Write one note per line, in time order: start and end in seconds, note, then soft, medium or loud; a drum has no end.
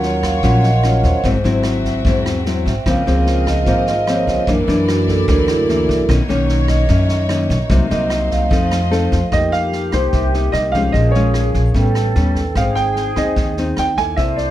0.00 0.40 D#2 medium
0.00 0.42 D#3 medium
0.00 0.40 F#3 medium
0.00 1.22 F#3 medium
0.00 0.40 C#4 medium
0.00 0.41 F4 medium
0.00 1.22 F4 medium
0.00 1.26 A#4 medium
0.00 1.22 C#5 medium
0.00 0.45 F#5 medium
0.00 snare soft
0.05 0.23 C#5 medium
0.23 0.43 F5 medium
0.23 kick soft
0.23 cross-stick medium
0.23 snare soft
0.43 1.00 A#1 medium
0.43 1.22 A#2 medium
0.43 0.69 F#3 medium
0.43 0.70 C#4 medium
0.43 0.70 F4 medium
0.43 0.64 F#5 medium
0.43 kick medium
0.43 snare soft
0.63 0.83 D#5 medium
0.63 snare soft
0.83 1.23 F#3 medium
0.83 1.23 C#4 medium
0.83 1.23 F4 medium
0.83 1.04 C#5 medium
0.83 cross-stick medium
0.83 snare soft
1.03 1.13 D#2 medium
1.03 1.42 C5 medium
1.03 kick soft
1.03 snare soft
1.23 1.34 G#1 medium
1.23 2.03 G#2 medium
1.23 1.36 F#3 medium
1.23 4.44 C4 medium
1.23 1.36 C4 medium
1.23 1.36 E4 medium
1.23 2.84 F#4 medium
1.23 2.84 E5 medium
1.23 kick medium
1.23 snare soft
1.44 2.01 G#1 medium
1.44 2.02 F#3 medium
1.44 2.02 C4 medium
1.44 2.02 E4 medium
1.44 snare soft
1.63 cross-stick medium
1.63 snare soft
1.84 kick soft
1.84 snare soft
2.05 2.62 E2 loud
2.05 2.84 G#2 medium
2.05 2.43 F#3 medium
2.05 2.43 C4 medium
2.05 2.43 E4 medium
2.05 kick medium
2.05 snare soft
2.26 cross-stick medium
2.26 snare soft
2.46 2.73 F#3 medium
2.46 2.73 C4 medium
2.46 2.73 E4 medium
2.46 snare soft
2.66 2.75 G#1 medium
2.66 2.86 E5 medium
2.66 kick soft
2.66 snare soft
2.86 2.96 C#2 medium
2.86 3.65 C#3 medium
2.86 3.03 F3 medium
2.86 3.03 A#3 medium
2.86 3.04 C4 medium
2.86 4.46 F4 medium
2.86 4.46 A#4 medium
2.86 4.46 D#5 medium
2.86 3.07 F5 medium
2.86 kick medium
2.86 cross-stick medium
2.86 snare soft
3.06 3.63 C#2 medium
3.06 3.64 F3 medium
3.06 3.64 A#3 medium
3.06 3.64 C4 medium
3.06 3.26 G#4 medium
3.06 snare soft
3.26 3.47 C5 medium
3.26 snare soft
3.46 3.67 D#5 medium
3.46 kick soft
3.46 cross-stick medium
3.46 snare soft
3.66 4.24 G#1 medium
3.66 4.46 G#2 medium
3.66 3.93 F3 medium
3.66 3.93 A#3 medium
3.66 3.93 C4 medium
3.66 3.87 F5 medium
3.66 kick medium
3.66 snare soft
3.87 4.07 D#5 medium
3.87 snare soft
4.07 4.46 F3 medium
4.07 4.46 A#3 medium
4.07 4.47 C4 medium
4.07 4.28 C#5 medium
4.07 cross-stick medium
4.07 snare soft
4.27 4.37 C#2 medium
4.27 4.47 C5 medium
4.27 kick soft
4.27 snare soft
4.47 5.27 F#2 medium
4.47 4.57 F#2 loud
4.47 4.65 E3 medium
4.47 6.07 A#3 medium
4.47 4.65 A#3 medium
4.47 4.65 D4 medium
4.47 6.08 E4 medium
4.47 4.68 A#4 medium
4.47 6.08 D5 medium
4.47 kick medium
4.47 snare soft
4.67 5.24 F#2 medium
4.67 5.25 E3 medium
4.67 5.25 A#3 medium
4.67 4.88 D4 medium
4.67 5.25 D4 medium
4.67 snare soft
4.88 5.08 F#4 medium
4.88 cross-stick medium
4.88 snare soft
5.08 5.28 A4 medium
5.08 kick soft
5.08 snare soft
5.28 5.85 D2 loud
5.28 6.07 F#2 medium
5.28 5.55 E3 medium
5.28 5.55 A#3 medium
5.28 5.55 D4 medium
5.28 5.49 A#4 medium
5.28 kick medium
5.28 snare soft
5.48 5.61 E4 medium
5.48 cross-stick medium
5.48 snare soft
5.69 6.08 E3 medium
5.69 6.08 A#3 medium
5.69 6.08 D4 medium
5.69 snare soft
5.89 5.98 C2 medium
5.89 kick soft
5.89 snare soft
6.09 6.18 B1 loud
6.09 6.88 B2 medium
6.09 6.21 D#3 medium
6.09 6.21 A#3 medium
6.09 7.69 A#3 medium
6.09 6.21 C#4 medium
6.09 7.69 D#4 medium
6.09 7.69 C#5 medium
6.09 kick medium
6.09 cross-stick medium
6.09 snare soft
6.28 6.86 B1 medium
6.28 6.86 D#3 medium
6.28 6.87 A#3 medium
6.28 6.87 C#4 medium
6.28 6.67 C#5 medium
6.28 snare soft
6.49 snare soft
6.68 7.26 D#5 medium
6.68 kick soft
6.68 cross-stick medium
6.68 snare soft
6.88 7.68 F#2 medium
6.88 7.46 F#2 loud
6.88 7.27 D#3 medium
6.88 7.27 A#3 medium
6.88 7.27 C#4 medium
6.88 kick medium
6.88 snare soft
7.09 snare soft
7.29 7.57 D#3 medium
7.29 7.57 A#3 medium
7.29 7.57 C#4 medium
7.29 cross-stick medium
7.29 snare soft
7.50 7.60 B1 loud
7.50 kick soft
7.50 snare soft
7.70 7.80 C2 loud
7.70 8.49 C3 medium
7.70 7.87 F#3 medium
7.70 7.87 A#3 medium
7.70 8.51 A#3 medium
7.70 7.88 D#4 medium
7.70 8.51 D#4 medium
7.70 8.50 C5 medium
7.70 kick medium
7.70 snare soft
7.90 8.48 C2 medium
7.90 8.48 F#3 medium
7.90 8.48 A#3 medium
7.90 8.48 D#4 medium
7.90 8.29 D#5 medium
7.90 snare soft
8.10 cross-stick medium
8.10 snare soft
8.30 8.88 F5 medium
8.30 kick soft
8.30 snare soft
8.51 9.08 F2 medium
8.51 9.30 F3 medium
8.51 9.31 A3 medium
8.51 8.77 C4 medium
8.51 8.77 D#4 medium
8.51 9.31 F4 medium
8.51 8.78 A4 medium
8.51 9.31 D#5 medium
8.51 kick medium
8.51 snare soft
8.71 cross-stick medium
8.71 snare soft
8.91 9.19 C4 medium
8.91 9.18 D#4 medium
8.91 9.19 A4 medium
8.91 snare soft
9.12 9.21 F2 loud
9.12 kick soft
9.12 snare soft
9.29 9.89 F2 medium
9.29 10.11 F3 medium
9.29 9.89 A#3 soft
9.29 10.89 D#4 soft
9.29 9.90 D#4 soft
9.29 10.90 G4 soft
9.29 9.53 D#5 medium
9.29 kick medium
9.29 cross-stick medium
9.29 snare soft
9.33 10.91 G4 medium
9.33 10.92 A#4 soft
9.52 9.94 F5 loud
9.52 snare soft
9.72 snare soft
9.92 10.12 C2 medium
9.92 10.30 A#3 medium
9.92 10.30 D#4 medium
9.92 10.31 C5 medium
9.92 kick soft
9.92 cross-stick medium
9.92 snare soft
10.12 10.51 C2 medium
10.12 10.92 C3 medium
10.12 kick medium
10.12 snare soft
10.34 10.71 A#3 medium
10.34 10.71 D#4 medium
10.34 snare soft
10.52 10.91 C2 medium
10.52 10.72 D#5 medium
10.52 cross-stick medium
10.52 snare soft
10.72 11.11 F3 medium
10.72 11.12 G#3 medium
10.72 11.12 C#4 medium
10.72 10.92 F5 medium
10.72 kick soft
10.72 snare soft
10.90 11.51 A#1 medium
10.90 11.71 C#4 soft
10.90 11.72 G#4 soft
10.90 11.75 G#4 medium
10.90 11.14 D#5 medium
10.90 kick medium
10.90 snare soft
10.94 11.74 A#2 medium
10.94 11.73 A#4 soft
11.11 11.72 F3 medium
11.11 11.72 G#3 medium
11.11 11.90 C#5 medium
11.11 snare soft
11.16 11.72 C#4 medium
11.34 cross-stick medium
11.34 snare soft
11.54 11.73 A#1 medium
11.54 kick soft
11.54 snare soft
11.73 12.12 A1 medium
11.73 12.53 A2 soft
11.73 12.12 G3 medium
11.73 12.12 B3 soft
11.73 12.53 C#4 soft
11.73 12.12 C#4 medium
11.73 12.54 A4 soft
11.73 12.56 A4 medium
11.73 12.55 B4 soft
11.73 kick medium
11.73 snare soft
11.79 12.56 G5 medium
11.95 cross-stick medium
11.95 snare soft
12.15 12.53 D#2 loud
12.15 12.42 G3 medium
12.15 12.42 B3 soft
12.15 12.42 C#4 medium
12.15 snare soft
12.35 kick soft
12.35 snare soft
12.53 13.13 G#1 medium
12.53 13.35 G#2 medium
12.53 13.14 C4 medium
12.53 14.13 D#4 soft
12.53 13.14 D#4 medium
12.53 13.91 G#4 medium
12.53 12.77 F5 medium
12.53 kick medium
12.53 cross-stick medium
12.53 snare soft
12.58 14.15 C5 soft
12.58 14.16 G5 soft
12.75 13.17 G5 medium
12.75 snare soft
12.96 snare soft
13.16 13.35 D#2 medium
13.16 13.53 C4 medium
13.16 13.54 D#4 medium
13.16 13.54 D#5 medium
13.16 kick soft
13.16 cross-stick medium
13.16 snare soft
13.36 13.74 D#2 medium
13.36 14.16 D#3 medium
13.36 kick medium
13.36 snare soft
13.57 13.95 C4 medium
13.57 13.95 D#4 medium
13.57 snare soft
13.77 14.15 D#2 medium
13.77 13.97 G5 medium
13.77 cross-stick medium
13.77 snare soft
13.97 14.51 A#3 medium
13.97 14.51 E4 medium
13.97 14.51 A4 medium
13.97 14.18 G#5 medium
13.97 kick soft
13.97 snare soft
14.15 14.51 C2 medium
14.15 14.51 C3 soft
14.15 14.51 E4 soft
14.15 14.51 D5 soft
14.15 14.38 E5 medium
14.15 kick medium
14.15 snare soft
14.19 14.51 C5 loud
14.19 14.51 A5 soft
14.36 14.51 D5 medium
14.36 snare soft